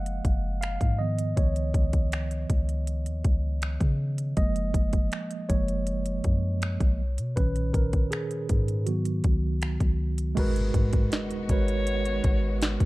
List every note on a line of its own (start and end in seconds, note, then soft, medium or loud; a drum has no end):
0.00 0.22 F#1 loud
0.00 0.96 F3 medium
0.00 0.96 G#3 soft
0.00 0.96 A#3 medium
0.00 0.99 D#5 medium
0.00 0.61 F5 medium
0.00 0.20 F#5 loud
0.06 closed hi-hat medium
0.25 0.79 F#1 loud
0.25 kick medium
0.25 closed hi-hat medium
0.61 1.00 F5 loud
0.61 finger snap loud
0.61 closed hi-hat medium
0.81 1.35 G#2 loud
0.81 kick medium
0.81 closed hi-hat soft
0.99 1.49 D#3 medium
0.99 1.50 F3 soft
0.99 1.50 B3 medium
0.99 1.38 D#5 medium
1.19 closed hi-hat medium
1.37 1.73 C#2 loud
1.37 3.95 C#5 medium
1.37 kick loud
1.37 closed hi-hat medium
1.56 closed hi-hat soft
1.74 2.46 C#2 medium
1.74 kick medium
1.74 closed hi-hat medium
1.93 kick medium
1.93 closed hi-hat soft
2.12 finger snap loud
2.12 closed hi-hat medium
2.31 closed hi-hat soft
2.50 3.07 C#2 loud
2.50 kick medium
2.50 closed hi-hat medium
2.69 closed hi-hat soft
2.87 closed hi-hat medium
3.06 3.24 D#2 loud
3.06 closed hi-hat medium
3.25 3.79 C#2 loud
3.25 kick medium
3.25 closed hi-hat medium
3.62 finger snap loud
3.62 closed hi-hat medium
3.81 4.35 C#3 medium
3.81 kick medium
3.81 closed hi-hat soft
4.18 closed hi-hat medium
4.37 4.73 F#1 loud
4.37 5.46 F3 medium
4.37 5.46 G#3 soft
4.37 5.46 A#3 medium
4.37 5.45 D#5 loud
4.37 kick medium
4.37 closed hi-hat medium
4.56 closed hi-hat soft
4.74 5.10 F#1 loud
4.74 kick medium
4.74 closed hi-hat medium
4.93 kick medium
4.93 closed hi-hat soft
5.12 finger snap loud
5.12 closed hi-hat medium
5.31 closed hi-hat soft
5.49 6.22 F#1 loud
5.49 5.83 F3 soft
5.49 5.84 G#3 soft
5.49 5.84 A#3 medium
5.49 7.42 C#5 medium
5.49 kick medium
5.49 closed hi-hat medium
5.68 closed hi-hat soft
5.87 closed hi-hat medium
6.06 closed hi-hat medium
6.24 6.78 F#2 loud
6.24 kick medium
6.24 closed hi-hat medium
6.62 finger snap loud
6.62 closed hi-hat medium
6.80 7.20 B1 loud
6.80 kick medium
6.80 closed hi-hat soft
7.18 7.36 B2 medium
7.18 closed hi-hat medium
7.36 7.73 B1 loud
7.36 8.46 A#2 soft
7.36 8.45 D#3 medium
7.36 8.46 C#4 medium
7.36 7.71 B4 medium
7.36 kick loud
7.36 closed hi-hat medium
7.56 closed hi-hat soft
7.73 8.10 B1 medium
7.73 8.13 A#4 medium
7.73 kick medium
7.73 closed hi-hat medium
7.93 kick medium
7.93 closed hi-hat soft
8.11 8.89 G#4 medium
8.11 finger snap loud
8.11 closed hi-hat medium
8.31 closed hi-hat soft
8.49 9.22 G#2 loud
8.49 kick medium
8.49 closed hi-hat medium
8.68 closed hi-hat soft
8.86 10.33 D#3 medium
8.86 10.33 F#3 soft
8.86 10.34 B3 medium
8.86 9.95 F#4 medium
8.86 closed hi-hat medium
9.05 closed hi-hat soft
9.24 9.78 C#2 loud
9.24 kick medium
9.24 closed hi-hat medium
9.62 finger snap loud
9.62 closed hi-hat medium
9.80 10.35 C#2 medium
9.80 kick medium
9.80 closed hi-hat soft
10.18 closed hi-hat medium
10.35 10.73 G#1 loud
10.35 12.85 D#3 medium
10.35 11.20 G#3 loud
10.35 12.85 G#3 medium
10.35 12.85 B3 medium
10.35 11.20 F#4 loud
10.35 12.85 F#4 medium
10.35 11.21 A#4 loud
10.35 kick loud
10.35 closed hi-hat medium
10.35 crash medium
10.35 impact medium
10.40 11.22 B4 loud
10.56 closed hi-hat soft
10.74 11.10 G#2 loud
10.74 kick medium
10.74 closed hi-hat medium
10.93 kick medium
10.93 closed hi-hat medium
11.12 12.85 D#5 medium
11.12 snare loud
11.12 closed hi-hat medium
11.31 closed hi-hat soft
11.48 12.21 G#1 loud
11.48 12.60 G#3 medium
11.48 12.61 F#4 medium
11.48 12.61 A#4 medium
11.48 12.59 C#5 loud
11.48 kick medium
11.48 closed hi-hat medium
11.52 12.62 B4 medium
11.68 closed hi-hat soft
11.87 closed hi-hat medium
12.05 closed hi-hat medium
12.24 12.78 G#1 loud
12.24 kick loud
12.24 closed hi-hat medium
12.62 snare loud
12.62 closed hi-hat medium
12.80 12.85 D#2 loud
12.80 kick loud
12.80 closed hi-hat soft